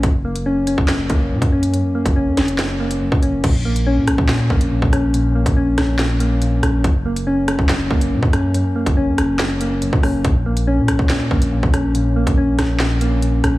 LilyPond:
<<
  \new Staff \with { instrumentName = "Synth keys" } { \time 4/4 \key bes \minor \tempo 4 = 141 ges,8 bes8 des'8 des'8 ges,8 bes8 ges,8 des'8 | ges,8 bes8 des'8 des'8 ges,8 bes8 ges,8 des'8 | bes,8 bes8 des'8 des'8 bes,8 bes8 bes,8 des'8 | bes,8 bes8 des'8 des'8 bes,8 bes8 bes,8 des'8 |
ges,8 bes8 des'8 des'8 ges,8 bes8 ges,8 des'8 | ges,8 bes8 des'8 des'8 ges,8 bes8 ges,8 des'8 | bes,8 bes8 des'8 des'8 bes,8 bes8 bes,8 des'8 | bes,8 bes8 des'8 des'8 bes,8 bes8 bes,8 des'8 | }
  \new Staff \with { instrumentName = "808-style bass" } { \clef bass \time 4/4 \key bes \minor ges,,4.~ ges,,16 ges,,8. ges,,8 bes,16 ges,8.~ | ges,16 r8 ges,,8 ges,16 ges,,4.~ ges,,16 ges,16 ges,,8 | bes,,4~ bes,,16 bes,16 bes,,16 bes,8. bes,,8. bes,,8.~ | bes,,8. bes,,8. bes,,2 bes,,8 |
ges,,4.~ ges,,16 ges,,8. ges,,8 bes,16 ges,8.~ | ges,16 r8 ges,,8 ges,16 ges,,4.~ ges,,16 ges,16 ges,,8 | bes,,4~ bes,,16 bes,16 bes,,16 bes,8. bes,,8. bes,,8.~ | bes,,8. bes,,8. bes,,2 bes,,8 | }
  \new DrumStaff \with { instrumentName = "Drums" } \drummode { \time 4/4 <hh bd>8. hh16 r8 hh16 bd16 <hc hh sn>8 <hh bd>8 r16 <hh bd>8 hh16 | hh8. <hh bd>16 r8 <hh sn>16 hh16 <hc hh sn>8. hh16 r16 bd16 hh8 | <cymc hh bd>8. hh16 r8 <hh ss>16 bd16 <hc hh sn>8 bd16 hh16 r16 bd16 <hh ss>8 | hh8. <hh bd>16 r8 <hh ss sn>8 <hc hh sn>8 hh8 hh8 <hh ss>8 |
<hh bd>8. hh16 r8 <hh ss>16 bd16 <hc hh sn>8 bd16 hh16 r16 bd16 <hh ss>8 | hh8. <hh bd>16 r8 <hh ss>8 <hc hh sn>8 hh8 hh16 bd16 <hho ss>8 | <hh bd>8. hh16 r8 <hh ss>16 bd16 <hc hh sn>8 bd16 hh16 r16 bd16 <hh ss>8 | hh8. <hh bd>16 r8 <hh ss sn>8 <hc hh sn>8 hh8 hh8 <hh ss>8 | }
>>